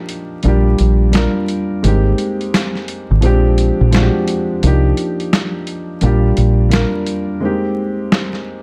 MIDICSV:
0, 0, Header, 1, 4, 480
1, 0, Start_track
1, 0, Tempo, 697674
1, 1265, Time_signature, 4, 2, 24, 8
1, 5934, End_track
2, 0, Start_track
2, 0, Title_t, "Grand piano"
2, 0, Program_c, 0, 0
2, 0, Control_c, 0, 64, 127
2, 0, Note_on_c, 0, 53, 77
2, 0, Note_on_c, 0, 58, 79
2, 0, Note_on_c, 0, 62, 69
2, 0, Note_on_c, 0, 63, 80
2, 0, Note_on_c, 0, 67, 96
2, 238, Note_off_c, 0, 53, 0
2, 242, Note_off_c, 0, 58, 0
2, 246, Note_off_c, 0, 62, 0
2, 250, Note_off_c, 0, 63, 0
2, 254, Note_off_c, 0, 67, 0
2, 298, Note_on_c, 0, 55, 88
2, 306, Note_on_c, 0, 58, 84
2, 314, Note_on_c, 0, 62, 85
2, 315, Control_c, 0, 64, 0
2, 320, Note_on_c, 0, 65, 80
2, 329, Note_on_c, 0, 67, 94
2, 440, Control_c, 0, 64, 127
2, 749, Note_off_c, 0, 55, 0
2, 753, Note_off_c, 0, 58, 0
2, 757, Note_off_c, 0, 62, 0
2, 761, Note_off_c, 0, 65, 0
2, 765, Note_off_c, 0, 67, 0
2, 767, Note_on_c, 0, 55, 81
2, 773, Note_on_c, 0, 58, 77
2, 781, Note_on_c, 0, 62, 82
2, 790, Note_on_c, 0, 65, 77
2, 797, Note_on_c, 0, 70, 106
2, 1224, Note_off_c, 0, 55, 0
2, 1227, Note_off_c, 0, 58, 0
2, 1231, Note_off_c, 0, 62, 0
2, 1235, Note_off_c, 0, 65, 0
2, 1239, Note_off_c, 0, 70, 0
2, 1257, Note_on_c, 0, 56, 87
2, 1264, Note_on_c, 0, 58, 77
2, 1273, Note_on_c, 0, 60, 82
2, 1274, Control_c, 0, 64, 0
2, 1281, Note_on_c, 0, 63, 72
2, 1288, Note_on_c, 0, 67, 94
2, 1383, Control_c, 0, 64, 127
2, 2157, Note_off_c, 0, 56, 0
2, 2160, Note_off_c, 0, 58, 0
2, 2165, Note_off_c, 0, 60, 0
2, 2169, Note_off_c, 0, 63, 0
2, 2172, Note_off_c, 0, 67, 0
2, 2209, Note_on_c, 0, 53, 95
2, 2216, Note_on_c, 0, 56, 80
2, 2224, Note_on_c, 0, 60, 86
2, 2231, Note_on_c, 0, 62, 82
2, 2232, Control_c, 0, 64, 0
2, 2239, Note_on_c, 0, 67, 105
2, 2349, Control_c, 0, 64, 127
2, 2665, Note_off_c, 0, 53, 0
2, 2669, Note_off_c, 0, 56, 0
2, 2672, Note_off_c, 0, 60, 0
2, 2676, Note_off_c, 0, 62, 0
2, 2680, Note_off_c, 0, 67, 0
2, 2690, Note_on_c, 0, 53, 91
2, 2698, Note_on_c, 0, 56, 79
2, 2705, Note_on_c, 0, 60, 79
2, 2714, Note_on_c, 0, 62, 79
2, 2721, Note_on_c, 0, 66, 77
2, 2767, Note_on_c, 0, 67, 94
2, 2769, Note_off_c, 0, 66, 0
2, 3145, Note_off_c, 0, 53, 0
2, 3149, Note_off_c, 0, 56, 0
2, 3153, Note_off_c, 0, 60, 0
2, 3157, Note_off_c, 0, 62, 0
2, 3183, Note_on_c, 0, 53, 80
2, 3184, Note_off_c, 0, 67, 0
2, 3190, Note_on_c, 0, 58, 76
2, 3193, Control_c, 0, 64, 0
2, 3198, Note_on_c, 0, 62, 69
2, 3206, Note_on_c, 0, 63, 82
2, 3213, Note_on_c, 0, 67, 98
2, 3301, Control_c, 0, 64, 127
2, 4080, Note_off_c, 0, 53, 0
2, 4083, Note_off_c, 0, 58, 0
2, 4087, Note_off_c, 0, 62, 0
2, 4091, Note_off_c, 0, 63, 0
2, 4095, Note_off_c, 0, 67, 0
2, 4137, Note_on_c, 0, 55, 89
2, 4144, Note_on_c, 0, 58, 82
2, 4152, Note_on_c, 0, 62, 89
2, 4153, Control_c, 0, 64, 0
2, 4160, Note_on_c, 0, 65, 80
2, 4168, Note_on_c, 0, 67, 97
2, 4283, Control_c, 0, 64, 127
2, 4589, Note_off_c, 0, 55, 0
2, 4592, Note_off_c, 0, 58, 0
2, 4596, Note_off_c, 0, 62, 0
2, 4600, Note_off_c, 0, 65, 0
2, 4603, Note_on_c, 0, 55, 81
2, 4604, Note_off_c, 0, 67, 0
2, 4612, Note_on_c, 0, 58, 79
2, 4619, Note_on_c, 0, 62, 82
2, 4627, Note_on_c, 0, 65, 75
2, 4635, Note_on_c, 0, 70, 104
2, 5062, Note_off_c, 0, 55, 0
2, 5066, Note_off_c, 0, 58, 0
2, 5070, Note_off_c, 0, 62, 0
2, 5074, Note_off_c, 0, 65, 0
2, 5078, Note_off_c, 0, 70, 0
2, 5095, Note_on_c, 0, 56, 88
2, 5103, Note_on_c, 0, 58, 78
2, 5111, Note_on_c, 0, 60, 82
2, 5112, Control_c, 0, 64, 0
2, 5119, Note_on_c, 0, 63, 77
2, 5126, Note_on_c, 0, 67, 94
2, 5242, Control_c, 0, 64, 127
2, 5934, Note_off_c, 0, 56, 0
2, 5934, Note_off_c, 0, 58, 0
2, 5934, Note_off_c, 0, 60, 0
2, 5934, Note_off_c, 0, 63, 0
2, 5934, Note_off_c, 0, 67, 0
2, 5934, End_track
3, 0, Start_track
3, 0, Title_t, "Fingered electric bass"
3, 0, Program_c, 1, 33
3, 310, Note_on_c, 1, 34, 107
3, 505, Note_off_c, 1, 34, 0
3, 550, Note_on_c, 1, 34, 91
3, 868, Note_off_c, 1, 34, 0
3, 1270, Note_on_c, 1, 32, 110
3, 1465, Note_off_c, 1, 32, 0
3, 2140, Note_on_c, 1, 32, 93
3, 2231, Note_off_c, 1, 32, 0
3, 2231, Note_on_c, 1, 34, 108
3, 2548, Note_off_c, 1, 34, 0
3, 2620, Note_on_c, 1, 34, 96
3, 2815, Note_off_c, 1, 34, 0
3, 3189, Note_on_c, 1, 36, 112
3, 3385, Note_off_c, 1, 36, 0
3, 4149, Note_on_c, 1, 34, 109
3, 4345, Note_off_c, 1, 34, 0
3, 4389, Note_on_c, 1, 34, 97
3, 4707, Note_off_c, 1, 34, 0
3, 5934, End_track
4, 0, Start_track
4, 0, Title_t, "Drums"
4, 59, Note_on_c, 9, 42, 71
4, 128, Note_off_c, 9, 42, 0
4, 293, Note_on_c, 9, 42, 73
4, 362, Note_off_c, 9, 42, 0
4, 540, Note_on_c, 9, 42, 81
4, 609, Note_off_c, 9, 42, 0
4, 778, Note_on_c, 9, 42, 105
4, 792, Note_on_c, 9, 38, 110
4, 847, Note_off_c, 9, 42, 0
4, 861, Note_off_c, 9, 38, 0
4, 1021, Note_on_c, 9, 42, 88
4, 1090, Note_off_c, 9, 42, 0
4, 1265, Note_on_c, 9, 42, 108
4, 1334, Note_off_c, 9, 42, 0
4, 1501, Note_on_c, 9, 42, 86
4, 1570, Note_off_c, 9, 42, 0
4, 1656, Note_on_c, 9, 42, 53
4, 1725, Note_off_c, 9, 42, 0
4, 1748, Note_on_c, 9, 38, 115
4, 1752, Note_on_c, 9, 42, 97
4, 1817, Note_off_c, 9, 38, 0
4, 1821, Note_off_c, 9, 42, 0
4, 1895, Note_on_c, 9, 38, 37
4, 1963, Note_off_c, 9, 38, 0
4, 1982, Note_on_c, 9, 42, 72
4, 2051, Note_off_c, 9, 42, 0
4, 2217, Note_on_c, 9, 42, 74
4, 2285, Note_off_c, 9, 42, 0
4, 2462, Note_on_c, 9, 42, 78
4, 2531, Note_off_c, 9, 42, 0
4, 2700, Note_on_c, 9, 42, 109
4, 2714, Note_on_c, 9, 38, 112
4, 2769, Note_off_c, 9, 42, 0
4, 2783, Note_off_c, 9, 38, 0
4, 2942, Note_on_c, 9, 42, 85
4, 3010, Note_off_c, 9, 42, 0
4, 3185, Note_on_c, 9, 42, 106
4, 3254, Note_off_c, 9, 42, 0
4, 3421, Note_on_c, 9, 42, 85
4, 3490, Note_off_c, 9, 42, 0
4, 3577, Note_on_c, 9, 42, 54
4, 3646, Note_off_c, 9, 42, 0
4, 3667, Note_on_c, 9, 38, 115
4, 3671, Note_on_c, 9, 42, 99
4, 3736, Note_off_c, 9, 38, 0
4, 3740, Note_off_c, 9, 42, 0
4, 3900, Note_on_c, 9, 42, 74
4, 3969, Note_off_c, 9, 42, 0
4, 4135, Note_on_c, 9, 42, 76
4, 4204, Note_off_c, 9, 42, 0
4, 4381, Note_on_c, 9, 42, 79
4, 4450, Note_off_c, 9, 42, 0
4, 4619, Note_on_c, 9, 42, 108
4, 4633, Note_on_c, 9, 38, 115
4, 4688, Note_off_c, 9, 42, 0
4, 4702, Note_off_c, 9, 38, 0
4, 4861, Note_on_c, 9, 42, 88
4, 4929, Note_off_c, 9, 42, 0
4, 5587, Note_on_c, 9, 38, 112
4, 5656, Note_off_c, 9, 38, 0
4, 5732, Note_on_c, 9, 38, 38
4, 5801, Note_off_c, 9, 38, 0
4, 5934, End_track
0, 0, End_of_file